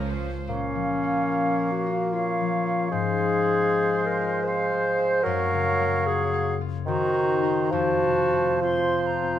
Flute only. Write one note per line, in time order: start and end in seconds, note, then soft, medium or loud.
0.48 2.08 F5 soft
2.12 2.89 F5 soft
2.91 4.43 F5 soft
4.45 5.22 F5 medium
5.24 6.56 F5 medium
6.87 7.76 A#5 soft
7.75 8.63 A5 soft
8.63 9.08 C6 soft
9.07 9.39 A#5 soft